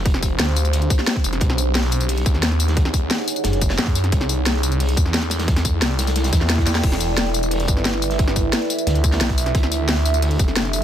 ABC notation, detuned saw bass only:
X:1
M:4/4
L:1/8
Q:1/4=177
K:C
V:1 name="Detuned saw bass" clef=bass
F,,,2 D,,3 z2 F,,, | B,,,4- B,,, ^D,,3- | ^D,,2 z4 ^F,,2 | C,,4- C,, E,,3- |
E,,2 C,,3 z2 E,, | E,,,4- E,,, G,,,3- | G,,,2 z4 B,,,2 | D,,4- D,, F,,,3 |]